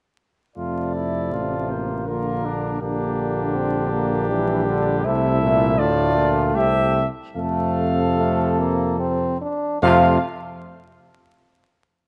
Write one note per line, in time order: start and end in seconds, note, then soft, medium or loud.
0.56 1.34 F2 soft
0.56 2.09 C3 soft
0.56 1.29 A3 soft
0.56 0.92 F4 soft
0.56 1.70 D5 medium
0.95 1.34 E4 soft
1.32 2.09 A1 medium
1.32 1.72 A3 soft
1.32 2.07 F4 soft
1.69 2.07 A#3 soft
1.69 2.07 C5 medium
2.06 2.81 A#1 soft
2.06 2.81 D3 soft
2.06 2.81 A#3 soft
2.06 2.47 F4 soft
2.06 2.80 A#4 medium
2.45 2.81 D4 medium
2.81 5.07 A#1 medium
2.81 4.31 D3 medium
2.81 3.57 A#3 medium
2.81 5.06 D4 medium
2.81 5.07 G4 medium
3.55 3.92 C4 medium
3.92 4.29 A#3 medium
4.30 4.69 E3 medium
4.30 5.07 G3 medium
4.67 5.04 D3 medium
5.05 5.81 C2 medium
5.05 5.41 C3 medium
5.05 5.79 A3 medium
5.05 5.81 E4 medium
5.05 5.80 E5 loud
5.42 5.81 A#2 medium
5.78 6.57 D2 medium
5.78 6.18 A2 medium
5.78 7.03 A3 medium
5.78 6.57 F4 medium
5.78 6.38 D5 loud
6.17 6.55 A#2 medium
6.55 7.08 C2 medium
6.55 7.06 C3 medium
6.55 7.07 G4 medium
6.55 7.06 E5 loud
7.36 9.44 F2 medium
7.36 9.44 C3 medium
7.36 8.06 A3 medium
7.36 9.44 A4 medium
7.36 8.96 F5 loud
8.17 8.60 A3 medium
8.59 8.99 A#3 medium
9.00 9.41 C4 medium
9.41 9.81 D4 medium
9.82 10.18 F2 loud
9.82 10.19 C3 medium
9.82 10.18 A3 medium
9.82 10.19 F4 medium
9.82 10.18 F5 loud